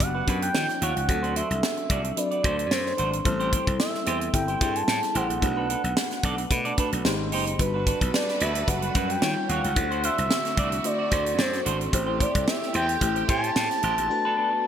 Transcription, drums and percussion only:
0.00 kick, closed hi-hat
0.27 kick, closed hi-hat
0.42 closed hi-hat
0.55 snare
0.69 snare, closed hi-hat
0.82 closed hi-hat
0.97 closed hi-hat
1.09 kick, closed hi-hat
1.24 closed hi-hat
1.36 closed hi-hat
1.51 closed hi-hat
1.63 snare
1.77 closed hi-hat
1.90 kick, closed hi-hat
2.05 closed hi-hat
2.17 closed hi-hat
2.31 closed hi-hat
2.44 kick, closed hi-hat
2.59 closed hi-hat
2.71 snare
2.86 snare
2.98 closed hi-hat
3.13 closed hi-hat
3.25 kick, closed hi-hat
3.40 closed hi-hat
3.53 kick, closed hi-hat
3.67 kick, closed hi-hat
3.80 snare
3.95 snare
4.06 closed hi-hat
4.21 closed hi-hat
4.34 kick, closed hi-hat
4.48 closed hi-hat
4.61 kick, closed hi-hat
4.76 closed hi-hat
4.88 snare
5.03 snare, closed hi-hat
5.15 closed hi-hat
5.30 closed hi-hat
5.42 kick, closed hi-hat
5.70 closed hi-hat
5.84 closed hi-hat
5.97 snare
6.11 snare, closed hi-hat
6.23 kick, closed hi-hat
6.38 closed hi-hat
6.51 kick, closed hi-hat
6.65 closed hi-hat
6.78 kick, closed hi-hat
6.93 closed hi-hat
7.05 snare
7.32 open hi-hat
7.47 closed hi-hat
7.59 kick, closed hi-hat
7.87 kick, closed hi-hat
8.01 kick, closed hi-hat
8.14 snare
8.29 snare
8.40 closed hi-hat
8.55 closed hi-hat
8.68 kick, closed hi-hat
8.82 closed hi-hat
8.95 kick, closed hi-hat
9.10 closed hi-hat
9.22 snare
9.49 closed hi-hat
9.64 closed hi-hat
9.76 kick, closed hi-hat
9.91 closed hi-hat
10.03 closed hi-hat
10.18 closed hi-hat
10.31 snare
10.45 snare, closed hi-hat
10.57 kick, closed hi-hat
10.72 closed hi-hat
10.84 closed hi-hat
11.11 kick, closed hi-hat
11.26 closed hi-hat
11.39 snare
11.53 snare, closed hi-hat
11.66 closed hi-hat
11.81 closed hi-hat
11.93 kick, closed hi-hat
12.20 kick, closed hi-hat
12.35 kick, closed hi-hat
12.48 snare
12.63 snare
12.74 closed hi-hat
12.89 closed hi-hat
13.01 kick, closed hi-hat
13.16 closed hi-hat
13.29 kick, closed hi-hat
13.44 closed hi-hat
13.56 snare
13.71 snare, closed hi-hat
13.83 closed hi-hat
13.98 closed hi-hat

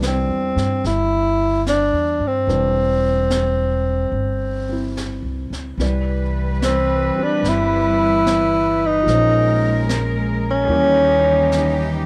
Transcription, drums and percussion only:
0.02 snare, hi-hat pedal
0.57 snare
0.84 brush sweep, snare
1.66 snare, hi-hat pedal
2.49 brush sweep, snare
3.30 snare, hi-hat pedal
4.13 brush sweep
4.97 snare, hi-hat pedal
5.52 snare
5.79 brush sweep, snare
6.62 snare, hi-hat pedal
7.44 brush sweep, snare
8.27 snare, hi-hat pedal
9.07 brush sweep, snare
9.89 snare, hi-hat pedal
10.70 brush sweep
11.52 snare, hi-hat pedal

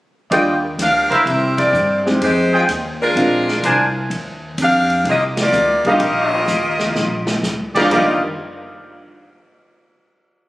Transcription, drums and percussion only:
0.32 ride
0.79 snare, hi-hat pedal, ride
1.11 kick, ride
1.27 ride
1.58 kick, ride
1.74 hi-hat pedal
2.06 snare
2.22 ride
2.69 hi-hat pedal, ride
3.17 ride
3.48 snare
3.63 hi-hat pedal, ride
4.11 ride
4.58 hi-hat pedal, ride
4.90 ride
5.05 ride
5.37 snare, ride
5.53 hi-hat pedal
5.85 kick, ride
6.00 ride
6.47 snare, hi-hat pedal
6.79 snare
6.95 snare
7.27 snare
7.43 snare, hi-hat pedal
7.75 kick, crash
7.91 kick, floor tom, ride bell

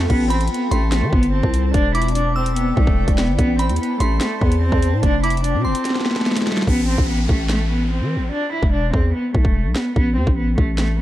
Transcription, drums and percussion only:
0.10 kick, crash
0.30 closed hi-hat
0.41 closed hi-hat
0.48 closed hi-hat
0.54 closed hi-hat
0.71 closed hi-hat
0.92 snare, closed hi-hat
1.13 kick
1.23 closed hi-hat
1.43 kick
1.54 closed hi-hat
1.74 kick, closed hi-hat
1.95 closed hi-hat
2.02 closed hi-hat
2.08 closed hi-hat
2.15 closed hi-hat
2.46 closed hi-hat
2.56 closed hi-hat
2.77 kick
2.87 kick
3.08 kick, closed hi-hat
3.18 snare
3.39 kick, closed hi-hat
3.59 closed hi-hat
3.69 closed hi-hat
3.76 closed hi-hat
3.83 closed hi-hat
4.00 closed hi-hat
4.21 snare, closed hi-hat
4.41 kick
4.52 closed hi-hat
4.72 kick
4.82 closed hi-hat
5.03 kick, closed hi-hat
5.24 closed hi-hat
5.30 closed hi-hat
5.37 closed hi-hat
5.44 closed hi-hat
5.75 closed hi-hat
5.85 snare, closed hi-hat
5.90 snare
5.95 snare
6.01 snare
6.06 snare
6.11 snare
6.16 snare
6.21 snare
6.26 snare
6.31 snare
6.37 snare, closed hi-hat
6.42 snare
6.47 snare
6.52 snare
6.57 snare
6.62 snare
6.67 kick
6.98 kick
7.29 kick
7.50 snare
8.63 kick
8.94 kick
9.35 kick
9.45 kick
9.76 snare
9.96 kick
10.27 kick
10.58 kick
10.78 snare

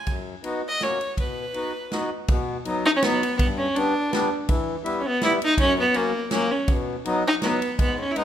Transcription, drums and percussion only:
0.07 kick, ride
0.44 ride
0.81 snare, ride
1.01 ride
1.17 kick, ride
1.54 ride
1.92 snare, ride
2.28 kick, ride
2.65 ride
3.02 snare, ride
3.23 ride
3.39 kick, ride
3.76 ride
4.13 snare, ride
4.49 kick, ride
4.86 ride
5.22 snare, ride
5.42 ride
5.58 kick, ride
5.94 ride
6.31 snare, ride
6.68 kick, ride
7.06 ride
7.42 snare, ride
7.62 ride
7.79 kick, ride
8.16 ride

